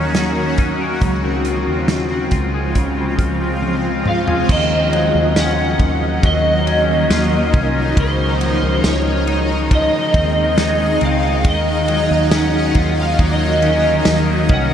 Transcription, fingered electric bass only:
Already playing: D#2
1.02 C#2
1.67 D#2
2.32 C#2
3.18 C#2
4.49 D#2
5.15 D#2
5.80 D#2
6.23 D#2
7.10 D#2
7.54 C2
7.97 C#2
8.62 C#2
8.84 C#2
10.14 D#2
11.02 C#2
11.45 D#2
12.10 D#2
12.75 D#2
13.19 D#2
14.06 D#2
14.50 C2

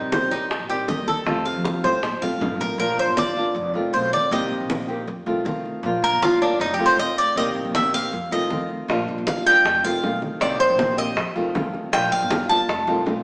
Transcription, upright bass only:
0.02 C3
0.31 C2
0.59 A1
0.97 D#2
1.26 F2
1.55 F3
1.83 F2
2.12 D2
2.21 F1
2.40 G1
2.60 A1
2.78 A#1
2.97 A#1
3.06 G1
3.54 F1
3.74 C2
3.93 B1
4.31 C2
4.51 C2
4.60 A#1
5.07 F2
5.26 C2
5.45 C2
5.83 A#1
6.02 A#1
6.12 G1
6.60 F1
6.79 C2
6.98 F1
7.36 C2
7.55 C2
7.65 A#1
8.13 F2
8.31 C2
8.50 F2
8.88 A#1
9.08 A#1
9.18 G1
9.65 F1
9.84 C2
10.04 B1
10.41 C2
10.60 C2
10.70 A#1
11.17 F2
11.36 C2
11.55 F2
11.93 A#1
12.12 A#1
12.22 G1
12.69 F1
12.87 C2
13.06 B1

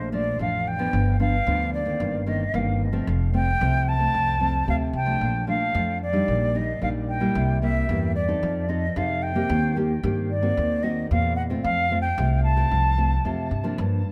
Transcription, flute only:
0.13 D5
0.41 F5
0.67 G5
1.20 F5
1.73 D5
2.26 D#5
2.55 F5
3.35 G5
3.88 A5
4.69 F5
4.95 G5
5.49 F5
6.02 D5
6.56 D#5
6.83 F5
7.09 G5
7.62 E5
8.15 D5
8.69 D#5
8.97 F5
9.22 G5
10.30 D5
10.83 D#5
11.11 F5
11.36 F#5
11.63 F5
12.01 G5
12.43 A5

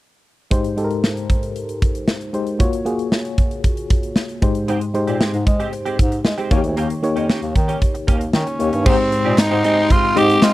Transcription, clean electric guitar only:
4.68 G#3 C4 G4
4.81 muted clean electric guitar stroke
4.95 muted clean electric guitar stroke
5.07 G#3 C4 G4
5.20 G#3 C4 G4
5.33 muted clean electric guitar stroke
5.46 muted clean electric guitar stroke
5.60 G#3 C4 G4
5.73 muted clean electric guitar stroke
5.86 G#3 C4 G4
6.12 muted clean electric guitar stroke
6.25 muted clean electric guitar stroke
6.38 G#3 C4 G4
6.51 A#3 C#4 G4
6.64 muted clean electric guitar stroke
6.77 A#3 C#4 G4
6.90 muted clean electric guitar stroke
7.03 muted clean electric guitar stroke
7.16 A#3 C#4 G4
7.29 A#3 C#4 G4
7.42 muted clean electric guitar stroke
7.55 muted clean electric guitar stroke
7.68 A#3 C#4 G4
7.81 muted clean electric guitar stroke
7.94 muted clean electric guitar stroke
8.07 A#3 C#4 G4
8.21 muted clean electric guitar stroke
8.34 muted clean electric guitar stroke
8.47 muted clean electric guitar stroke
8.73 muted clean electric guitar stroke
8.86 C4 D#4 G4
8.99 muted clean electric guitar stroke
9.12 muted clean electric guitar stroke
9.25 C4 D#4 G4
9.38 muted clean electric guitar stroke
9.51 C4 D#4 G4
9.64 C4 D#4 G4
9.77 muted clean electric guitar stroke
9.90 muted clean electric guitar stroke
10.03 muted clean electric guitar stroke
10.16 C4 D#4 G4
10.29 muted clean electric guitar stroke
10.42 C4 D#4 G4

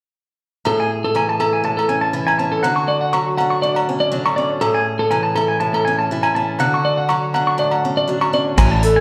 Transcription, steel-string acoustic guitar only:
0.65 A2 G#4
1.15 E3
1.40 E4
1.64 A2
1.89 C#4
2.13 E3 E4
2.39 C#4
2.64 D3 F#4
3.13 F#3
3.40 D4
3.63 A2
3.89 C#4
4.12 F#3 D4
4.38 C#4
4.61 A2 G#4
5.12 E3
5.37 E4
5.60 A2
5.87 C#4
6.11 E3 E4
6.36 C#4
6.60 D3 F#4
7.10 F#3
7.36 D4
7.58 A2
7.85 C#4
8.08 F#3 D4
8.33 C#4
8.58 A2 E4

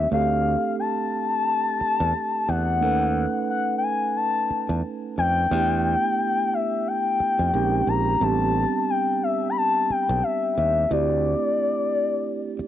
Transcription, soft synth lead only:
0.13 F5
0.79 A5
2.48 F#5
3.50 F#5
3.78 G5
3.83 G#5
4.16 A5
5.18 G5
6.54 E5
6.87 G5
7.89 A#5
8.23 A5
8.90 G5
9.23 E5
9.49 B5
9.57 A5
9.91 G5
10.24 E5
10.58 E5
10.91 D5

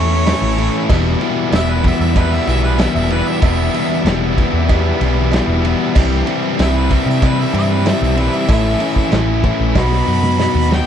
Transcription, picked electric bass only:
Already playing: E2
0.42 A1
0.89 E1
1.52 E1
2.00 E2
2.47 B1
2.95 E1
3.43 E1
4.05 E1
4.53 E2
5.00 B1
5.48 E1
5.96 C2
6.59 C2
7.06 C3
7.54 G2
8.02 B1
8.48 A1
9.12 A1
9.59 A#1
9.75 B1
10.08 F#2
10.55 D#2

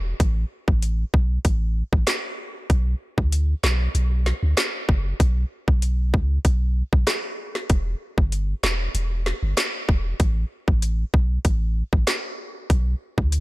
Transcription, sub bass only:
Already playing: E1
0.20 A1
0.68 A1
1.14 B1
1.45 A1
1.93 A1
2.70 B1
3.18 D2
3.64 B1
3.95 B1
4.43 D2
4.89 F#1
5.20 B1
5.68 B1
6.14 C#2
6.45 B1
6.93 B1
7.70 E1
8.18 G1
8.63 E1
8.95 E1
9.43 G1
9.89 E1
10.20 A1
10.68 A1
11.14 B1
11.45 A1
11.93 A1
12.70 B1
13.18 D2

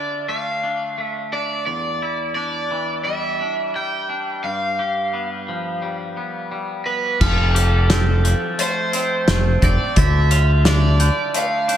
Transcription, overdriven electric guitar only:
Already playing: D5
0.29 F5
1.00 E5
1.33 D5
1.66 D5
2.35 D5
3.04 E5
3.76 G5
4.44 F5
6.86 B4
7.21 A4
8.61 C5
9.64 D5
9.99 E5
10.68 D5
11.37 F5

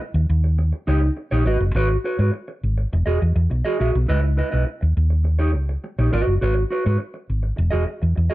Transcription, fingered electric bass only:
0.14 D#2
0.30 D#2
0.88 C#2
1.32 A#1
1.46 G#1
1.60 F#1
1.75 G#1
2.19 G#2
2.63 G#1
2.93 E1
3.06 E1
3.22 E2
3.36 E2
3.51 B1
3.80 A#1
3.95 B1
4.09 C#2
4.53 B1
4.82 D#2
4.97 D#2
5.55 C#2
5.99 A#1
6.13 G#1
6.27 F#1
6.42 G#1
6.86 G#2
7.30 G#1
7.58 E1
7.73 E1
8.03 E2
8.17 E2

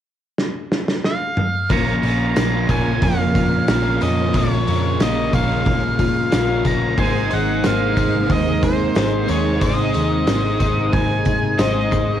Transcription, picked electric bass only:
1.70 A#1
2.03 A#1
2.37 A#1
2.69 A#1
3.02 F2
3.69 A#1
4.02 F2
4.34 A#1
4.68 F2
5.01 A#1
5.33 A#1
5.67 A#1
5.99 A#2
6.34 A#1
6.65 A#1
6.98 G#1
7.33 G#1
7.67 G#1
7.97 G#1
8.30 D#2
8.96 G#1
9.29 D#2
9.62 G#1
9.95 D#2
10.28 G#1
10.61 G#1
10.93 G#1
11.27 G#2
11.59 G#1
11.93 G#1

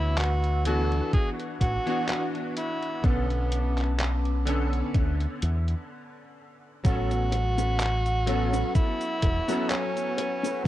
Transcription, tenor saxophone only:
Already playing: E4
0.19 F#4
0.66 A4
1.14 G#4
1.61 F#4
2.57 E4
3.05 B3
6.86 F#4
8.75 E4
9.69 C#4
10.64 B3

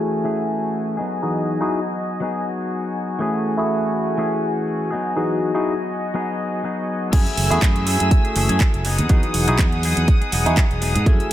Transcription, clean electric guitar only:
Already playing: E3 A3 C#4 G#4
0.24 E3 A3 C#4 G#4
0.97 F#3 B3 D#4 G#4
2.20 F#3 B3 D#4 G#4
3.19 E3 A3 C#4 G#4
4.17 E3 A3 C#4 G#4
4.91 F#3 B3 D#4 G#4
6.14 F#3 B3 D#4 G#4
6.63 F#3 B3 D#4 G#4
7.12 E3 A3 C#4 G#4
7.50 A3 C#4 G#4
7.62 A3
7.86 E3 A3 C#4 G#4
8.00 A3 C#4 G#4
8.24 A3 C#4 G#4
8.35 E3 A3 C#4 G#4
8.49 E3 A3 C#4 G#4
8.85 F#3 B3 D#4 G#4
8.98 B3 D#4 G#4
9.09 F#3 B3 D#4 G#4
9.47 B3 D#4 G#4
9.59 F#3
9.83 F#3 B3 D#4 G#4
10.21 B3 D#4 G#4
10.32 F#3 B3 D#4 G#4
10.46 F#3 B3 D#4 G#4
10.81 F#3 B3 D#4 G#4
10.95 B3 D#4 G#4
11.06 E3 A3 C#4 G#4

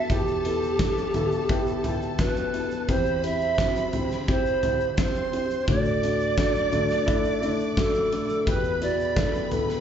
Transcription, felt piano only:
Already playing: B3 E4 F#4 G4 A4
0.10 E2 B2 B3 E4 G4
0.45 B3 E4 A4
0.80 B3 E4 A4
1.14 B3 E4 A4
1.49 B3 E4 G4
1.84 B3 E4 G4
2.18 B3 E4 F#4
2.53 B3 E4 G4
2.88 E2 E3 C4 E4 G4
3.23 C4 E4 G4
3.58 C4 E4 F#4
3.93 C4 E4 G4
4.28 C4 E4 G4
4.63 C4 E4 G4
4.97 C4 E4 G4
5.32 C4 E4 G4
5.68 D2 A2 A3 D4 F#4
6.03 A3 D4 F#4
6.37 A3 D4 F#4
6.72 A3 D4 F#4
7.06 A3 D4 E4
7.41 A3 D4 E4
7.77 A3 D4 F#4
8.12 A3 D4 A4
8.46 E2 B2 B3 E4 G4
8.81 B3 E4 F#4
9.16 B3 E4 A4
9.51 B3 E4 A4

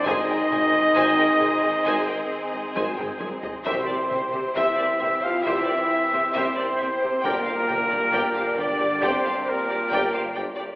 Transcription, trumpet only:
0.07 D#5
3.67 C5
4.57 E5
5.02 E5
5.24 F5
5.46 E5
6.37 C5
7.25 A#4
8.59 D5
9.03 C5
9.49 A#4

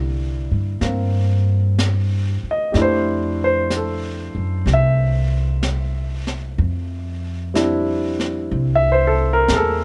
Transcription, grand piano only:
Already playing: D3 G3 A#3 E4
0.82 A#3 C4
2.51 D#5
2.72 A3 D4 G4
2.77 E4
2.82 C5
3.44 C5
3.77 A4
4.73 E5
7.54 G3 C4 D4 E4
8.75 E5
8.92 C5
9.07 A4
9.33 A#4
9.52 G#4 A#4
9.56 A4

